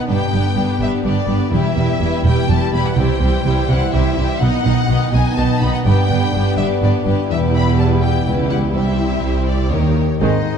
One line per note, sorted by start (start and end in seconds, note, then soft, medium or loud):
0.00 0.11 B2 soft
0.00 0.31 B3 soft
0.00 1.49 B3 medium
0.00 0.11 D#4 soft
0.00 0.55 B4 soft
0.07 0.18 G1 medium
0.07 0.16 G2 soft
0.07 1.55 G2 medium
0.07 1.52 D3 soft
0.07 0.32 B3 soft
0.07 0.32 D4 soft
0.07 0.30 G4 soft
0.07 0.30 B4 soft
0.07 0.80 G5 medium
0.31 0.41 G1 soft
0.31 0.40 G2 soft
0.31 1.27 B3 soft
0.31 0.55 B3 soft
0.31 0.55 D4 soft
0.31 0.53 G4 soft
0.31 0.54 B4 soft
0.55 0.65 G1 soft
0.55 0.64 G2 medium
0.55 0.80 B3 soft
0.55 0.80 D4 soft
0.55 0.79 G4 soft
0.55 0.79 B4 soft
0.55 1.03 B4 soft
0.80 0.88 G1 soft
0.80 0.88 G2 soft
0.80 1.04 B3 soft
0.80 1.55 D4 soft
0.80 1.04 D4 soft
0.80 1.04 G4 soft
0.80 1.04 B4 soft
0.80 0.90 E5 medium
1.04 1.13 G1 medium
1.04 1.12 G2 medium
1.04 1.27 B3 soft
1.04 1.27 D4 soft
1.04 1.26 G4 soft
1.04 2.23 B4 soft
1.04 1.26 B4 soft
1.04 1.52 D5 medium
1.27 1.36 G1 soft
1.27 1.36 G2 soft
1.27 1.75 B3 soft
1.27 1.52 B3 soft
1.27 1.52 D4 soft
1.27 1.51 G4 soft
1.27 1.51 B4 soft
1.51 1.60 E1 medium
1.51 2.98 E2 soft
1.51 1.60 E2 medium
1.51 4.37 E3 medium
1.51 1.76 G3 medium
1.51 4.37 G3 medium
1.51 1.75 E4 medium
1.51 1.76 G4 soft
1.51 1.76 B4 medium
1.51 2.24 E5 medium
1.76 1.84 E1 soft
1.76 1.84 E2 medium
1.76 1.99 G3 soft
1.76 2.71 B3 soft
1.76 1.99 E4 soft
1.76 2.01 G4 soft
1.76 2.01 B4 soft
1.99 2.08 E1 medium
1.99 2.08 E2 medium
1.99 2.23 G3 soft
1.99 2.23 E4 medium
1.99 2.47 G4 soft
1.99 2.25 G4 soft
1.99 2.25 B4 medium
2.24 2.32 E1 medium
2.24 2.33 E2 medium
2.24 2.47 G3 soft
2.24 2.47 E4 soft
2.24 2.49 G4 soft
2.24 2.99 B4 soft
2.24 2.49 B4 medium
2.24 2.49 G5 medium
2.48 2.57 E1 medium
2.48 2.57 E2 medium
2.48 2.72 G3 soft
2.48 2.71 E4 soft
2.48 3.43 G4 soft
2.48 2.73 G4 medium
2.48 2.73 B4 soft
2.48 2.74 A5 medium
2.72 2.80 E1 medium
2.72 2.81 E2 soft
2.72 2.95 G3 soft
2.72 2.98 B3 soft
2.72 2.95 E4 soft
2.72 2.97 G4 soft
2.72 2.97 B4 soft
2.72 2.85 B5 medium
2.86 2.97 F#5 medium
2.96 3.05 C2 medium
2.96 3.04 C3 medium
2.96 4.42 C3 medium
2.96 3.20 G3 medium
2.96 3.20 E4 medium
2.96 3.21 G4 medium
2.96 3.21 C5 medium
2.96 3.69 G5 medium
3.20 3.29 C2 medium
3.20 3.29 C3 medium
3.20 3.44 G3 soft
3.20 4.15 C4 soft
3.20 3.44 E4 soft
3.20 3.45 G4 soft
3.20 3.45 C5 medium
3.44 3.53 C2 medium
3.44 3.53 C3 medium
3.44 3.69 G3 medium
3.44 3.69 E4 medium
3.44 3.92 G4 medium
3.44 3.69 G4 medium
3.44 3.69 C5 soft
3.68 3.78 C2 medium
3.68 3.76 C3 medium
3.68 3.92 G3 soft
3.68 3.92 E4 soft
3.68 3.93 G4 soft
3.68 4.42 C5 soft
3.68 3.93 C5 medium
3.68 3.94 F#5 medium
3.93 4.01 C2 medium
3.93 4.02 C3 medium
3.93 4.16 G3 medium
3.93 4.16 E4 medium
3.93 4.43 G4 soft
3.93 4.17 G4 medium
3.93 4.17 C5 medium
3.93 4.40 E5 medium
4.17 4.25 C2 medium
4.17 4.25 C3 medium
4.17 4.41 G3 soft
4.17 4.43 C4 medium
4.17 4.41 E4 soft
4.17 4.41 G4 soft
4.17 4.41 C5 medium
4.40 4.49 B1 medium
4.40 5.87 B2 medium
4.40 4.49 B2 medium
4.40 5.82 D#3 medium
4.40 7.13 B3 medium
4.40 4.64 B3 medium
4.40 4.64 D#4 medium
4.40 4.65 D#4 medium
4.40 4.65 D#5 medium
4.40 5.13 F#5 medium
4.64 4.73 B1 medium
4.64 4.72 B2 medium
4.64 4.88 B3 medium
4.64 5.60 D#4 soft
4.64 4.88 D#4 medium
4.64 4.89 D#4 soft
4.64 4.89 D#5 soft
4.88 4.97 B1 medium
4.88 4.96 B2 medium
4.88 5.11 B3 medium
4.88 5.11 D#4 medium
4.88 5.12 D#4 medium
4.88 5.35 B4 soft
4.88 5.12 D#5 medium
5.12 5.21 B1 medium
5.12 5.20 B2 medium
5.12 5.36 B3 soft
5.12 5.36 D#4 soft
5.12 5.37 D#4 medium
5.12 5.87 D#5 soft
5.12 5.37 D#5 soft
5.12 5.37 G#5 medium
5.36 5.46 B1 medium
5.36 5.45 B2 medium
5.36 5.60 B3 medium
5.36 5.60 D#4 medium
5.36 5.61 D#4 soft
5.36 6.31 B4 soft
5.36 5.61 D#5 medium
5.36 5.62 A5 medium
5.61 5.71 B1 medium
5.61 5.69 B2 medium
5.61 5.84 B3 soft
5.61 5.87 D#4 soft
5.61 5.85 D#4 soft
5.61 5.86 D#4 soft
5.61 5.86 D#5 soft
5.61 5.73 B5 medium
5.74 5.79 F#5 medium
5.84 5.94 G1 medium
5.84 7.31 G2 medium
5.84 5.93 G2 medium
5.84 7.13 D3 medium
5.84 6.08 B3 soft
5.84 6.08 D4 medium
5.84 6.10 G4 medium
5.84 6.10 B4 medium
5.84 6.56 G5 medium
6.08 6.18 G1 medium
6.08 6.17 G2 medium
6.08 6.32 B3 soft
6.08 7.04 D4 soft
6.08 6.32 D4 soft
6.08 6.34 G4 soft
6.08 6.34 B4 soft
6.33 6.43 G1 medium
6.33 6.41 G2 medium
6.33 6.57 B3 soft
6.33 6.56 D4 medium
6.33 6.80 B4 soft
6.33 6.58 B4 medium
6.37 6.58 G4 soft
6.57 6.66 G1 medium
6.57 6.65 G2 medium
6.57 6.81 B3 medium
6.57 6.80 D4 soft
6.57 6.82 G4 soft
6.57 6.82 B4 soft
6.57 7.31 D5 soft
6.57 6.66 E5 medium
6.81 6.90 G1 medium
6.81 6.89 G2 medium
6.81 7.04 B3 soft
6.81 7.04 D4 soft
6.81 7.06 G4 soft
6.81 7.77 B4 soft
6.81 7.05 B4 soft
6.81 6.92 D5 soft
7.05 7.14 G1 medium
7.05 7.13 G2 medium
7.05 7.29 B3 soft
7.05 7.29 D4 soft
7.05 7.31 D4 soft
7.05 7.30 G4 soft
7.05 7.30 B4 soft
7.29 8.22 E1 medium
7.29 8.22 E2 medium
7.29 8.76 E2 medium
7.29 8.22 G3 medium
7.29 9.93 G3 medium
7.29 8.72 B3 medium
7.29 8.22 E4 medium
7.29 8.23 G4 medium
7.29 8.23 B4 medium
7.29 7.39 E5 medium
7.54 8.49 E4 soft
7.54 7.78 B5 medium
7.78 8.26 B4 soft
7.78 7.87 A5 medium
8.02 9.46 E5 soft
8.02 8.24 G5 medium
8.26 8.73 C#2 medium
8.26 8.73 C#2 soft
8.26 8.74 G3 soft
8.26 8.74 E4 soft
8.26 8.73 G4 soft
8.26 8.77 B4 soft
8.26 8.74 B4 medium
8.26 8.34 G5 medium
8.50 8.97 E4 soft
8.50 8.58 F#5 medium
8.74 9.21 C2 soft
8.74 9.22 C2 soft
8.74 9.74 C3 soft
8.74 9.71 G3 soft
8.74 9.72 C4 soft
8.74 9.71 E4 soft
8.74 9.70 G4 soft
8.74 9.72 C5 soft
8.74 9.46 E5 medium
8.98 9.74 E4 soft
9.23 9.71 C2 soft
9.23 9.74 C5 soft
9.47 9.71 D5 medium
9.47 9.74 E5 soft
9.71 10.01 D#2 soft
9.71 10.23 D#3 soft
9.71 10.01 D#3 soft
9.71 9.97 A#3 soft
9.71 10.01 D#4 soft
9.71 10.00 G4 soft
9.71 10.01 A#4 soft
9.71 10.21 C#5 soft
9.96 10.23 G4 soft
9.96 10.23 A#4 soft
10.20 10.29 G#1 medium
10.20 10.28 G#2 medium
10.20 10.58 G#2 medium
10.20 10.37 D#3 medium
10.20 10.44 D#3 medium
10.20 10.38 G#3 soft
10.20 10.44 G#3 medium
10.20 10.38 C4 soft
10.20 10.58 D#4 medium
10.20 10.38 G#4 medium
10.20 10.58 C5 medium
10.20 10.58 D#5 medium
10.33 10.58 C4 soft
10.45 10.58 G#4 soft